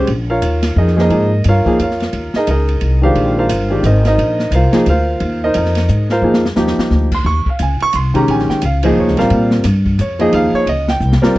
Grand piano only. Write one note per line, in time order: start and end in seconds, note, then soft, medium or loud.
0.30 0.73 F4 medium
0.30 0.74 A#4 medium
0.30 0.74 C#5 medium
0.30 0.73 F5 medium
0.78 0.95 D#4 medium
0.78 0.96 G#4 medium
0.78 0.98 A#4 medium
0.78 0.98 D#5 medium
0.96 1.08 F3 medium
0.96 1.09 A#3 medium
0.96 0.99 D#4 medium
0.96 1.10 G#4 medium
1.01 1.09 D#4 medium
1.01 1.43 A#4 medium
1.01 1.43 D#5 medium
1.09 1.29 F3 medium
1.09 1.29 A#3 medium
1.09 1.29 D#4 medium
1.09 1.30 G#4 medium
1.48 1.78 F4 medium
1.48 1.79 A#4 medium
1.48 1.78 C#5 medium
1.48 1.79 F5 medium
1.65 1.77 F3 medium
1.65 1.77 A#3 medium
1.65 1.77 D#4 medium
1.65 1.78 G#4 medium
1.82 2.32 F4 medium
1.82 2.32 A#4 medium
1.82 2.32 C#5 medium
1.82 2.32 F5 medium
2.36 2.48 D#4 medium
2.36 2.48 G#4 medium
2.36 2.48 A#4 medium
2.36 2.48 D#5 medium
2.50 3.01 D#4 medium
2.50 3.00 G#4 medium
2.50 3.00 A#4 medium
2.50 3.00 D#5 medium
3.02 3.47 D#3 medium
3.02 3.47 G#3 medium
3.02 3.47 D4 medium
3.02 3.35 F4 medium
3.02 3.47 G4 medium
3.02 3.35 A#4 medium
3.02 3.35 C5 medium
3.02 3.35 F5 medium
3.38 3.82 F4 medium
3.38 3.82 A#4 medium
3.38 3.81 C5 medium
3.38 3.82 F5 medium
3.70 3.82 D#3 medium
3.70 3.82 G#3 medium
3.70 3.83 D4 medium
3.70 3.83 G4 medium
3.85 4.05 D#4 medium
3.85 4.06 A#4 medium
3.85 4.05 C5 medium
3.85 4.05 D#5 medium
4.07 4.50 D#4 medium
4.07 4.50 A#4 medium
4.07 4.50 C5 medium
4.07 4.50 D#5 medium
4.54 4.86 F4 medium
4.54 4.85 A#4 medium
4.54 4.85 C5 medium
4.54 4.85 F5 medium
4.72 4.84 F3 medium
4.72 4.85 A#3 medium
4.72 4.85 D#4 medium
4.72 4.85 G#4 medium
4.89 5.40 F4 medium
4.89 5.40 A#4 medium
4.89 5.39 C5 medium
4.89 5.39 F5 medium
5.44 5.56 D#4 medium
5.44 5.56 A#4 medium
5.44 5.56 C5 medium
5.44 5.55 D#5 medium
5.57 6.07 D#4 medium
5.57 6.07 A#4 medium
5.57 6.08 C5 medium
6.11 6.43 F4 medium
6.11 6.43 A#4 medium
6.11 6.43 C5 medium
6.11 6.42 F5 medium
6.23 6.42 F3 medium
6.23 6.42 A#3 medium
6.23 6.42 D#4 medium
6.23 6.42 G#4 medium
6.56 7.08 F3 medium
6.56 7.08 A#3 medium
6.56 7.08 D#4 medium
6.56 7.08 G4 medium
7.15 7.26 C6 medium
7.26 7.46 C#6 loud
7.49 7.61 F5 medium
7.62 7.82 G#5 medium
7.82 7.94 C#6 loud
7.96 8.15 C6 medium
8.14 8.59 D#3 medium
8.14 8.59 G#3 medium
8.14 8.60 C#4 medium
8.14 8.60 G4 medium
8.14 8.28 A#5 medium
8.31 8.50 G#5 medium
8.50 8.62 G5 medium
8.65 8.84 F5 medium
8.84 9.16 F3 medium
8.84 9.15 A#3 medium
8.84 9.16 D#4 medium
8.84 9.16 G#4 medium
8.84 8.97 D#5 medium
9.00 9.19 C#5 medium
9.17 9.62 G3 medium
9.17 9.62 C4 medium
9.17 9.62 F4 medium
9.17 9.63 A#4 medium
9.17 9.50 F5 medium
10.01 10.20 C#5 medium
10.19 10.64 F3 medium
10.19 10.64 A#3 medium
10.19 10.65 D#4 medium
10.19 10.65 G#4 medium
10.19 10.33 D#5 medium
10.34 10.54 F5 loud
10.55 10.67 C#5 loud
10.69 10.89 D#5 medium
10.90 11.27 G5 loud
11.22 11.38 G3 medium
11.22 11.38 C4 medium
11.22 11.38 F4 medium
11.22 11.38 A#4 medium